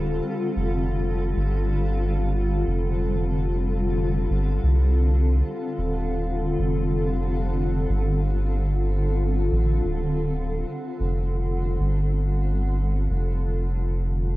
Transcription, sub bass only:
0.00 0.20 D1 loud
0.56 1.34 F1 medium
1.36 2.64 G1 medium
2.67 4.27 F1 loud
4.30 4.59 G1 medium
4.63 5.42 C2 loud
5.78 6.55 D#1 medium
6.59 7.86 F1 medium
7.89 9.49 G1 loud
9.52 9.81 A1 medium
9.84 10.64 D1 loud
11.00 11.77 F1 medium
11.80 13.07 G1 medium
13.10 14.37 F1 loud

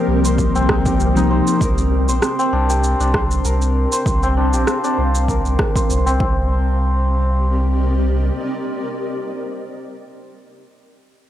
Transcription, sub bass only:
0.08 0.49 C2 medium
0.55 0.95 C2 medium
1.00 1.41 C2 loud
1.61 2.09 C2 loud
2.08 2.19 A#1 medium
2.53 2.94 C2 medium
3.00 3.40 C2 medium
3.45 3.86 C2 loud
4.06 4.55 C2 medium
4.54 4.64 A#1 medium
4.98 5.40 C2 medium
5.45 5.56 C2 loud
5.90 6.20 C2 medium
6.20 8.30 C2 medium

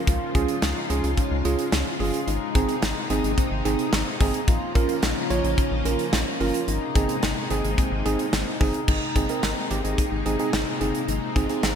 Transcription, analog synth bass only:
0.07 0.18 C#2 loud
0.35 0.46 C#2 loud
0.62 0.73 C#2 loud
0.90 1.01 C#2 loud
1.04 1.15 C#2 loud
1.31 1.42 C#2 loud
1.45 1.56 C#2 loud
1.72 1.83 C#2 loud
2.00 2.11 G1 loud
2.28 2.39 G#1 loud
2.55 2.66 G#1 loud
2.83 2.94 G#1 loud
3.10 3.21 G#1 loud
3.24 3.35 G#1 loud
3.52 3.62 G#1 medium
3.65 3.76 G#1 loud
3.93 4.04 G#1 loud
4.21 4.31 G#1 loud
4.48 4.59 A#1 loud
4.75 4.86 A#1 loud
5.03 5.14 A#1 loud
5.30 5.41 A#1 loud
5.44 5.55 A#1 loud
5.72 5.83 A#1 loud
5.85 5.96 A#1 loud
6.13 6.24 A#1 loud
6.41 6.51 G1 medium
6.68 6.79 G#1 loud
6.96 7.06 G#1 medium
7.23 7.34 G#1 loud
7.51 7.61 G#1 loud
7.64 7.75 G#1 loud
7.92 8.03 G#1 loud
8.06 8.17 G#1 loud
8.33 8.44 G#1 loud
8.61 8.72 G1 medium
8.88 8.99 G#1 loud
9.16 9.27 G#1 loud
9.43 9.54 G#1 loud
9.71 9.82 G#1 medium
9.84 9.95 G#1 loud
10.12 10.23 G#1 medium
10.26 10.37 G#1 loud
10.53 10.64 G#1 loud
10.81 10.92 G1 medium
11.08 11.19 G#1 loud
11.36 11.47 G#1 loud
11.63 11.74 G#1 loud

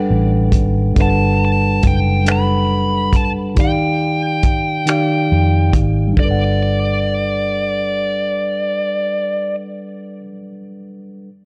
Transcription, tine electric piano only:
0.00 0.94 G3 medium
0.00 0.96 D4 medium
0.00 0.97 A4 medium
0.00 0.99 B4 medium
0.00 1.01 F#5 medium
0.00 3.58 G5 medium
0.94 1.87 G3 medium
0.94 1.87 D4 medium
0.94 1.88 A4 medium
0.99 1.89 B4 medium
0.99 1.90 F#5 medium
2.24 3.17 G3 medium
2.24 3.18 D4 soft
2.24 3.18 A4 soft
2.29 3.19 B4 medium
2.29 3.20 F#5 medium
3.55 4.47 D#3 medium
3.55 4.48 D#4 medium
3.55 4.49 G4 medium
3.59 4.49 D5 medium
3.59 4.50 F5 medium
4.86 5.78 D#3 medium
4.86 5.79 D#4 medium
4.86 5.79 G4 medium
4.90 5.80 D5 medium
4.90 5.81 F5 medium
6.07 10.19 G3 medium
6.13 10.22 D4 medium
6.19 10.25 A4 medium
6.25 10.28 B4 medium
6.31 10.31 F#5 medium

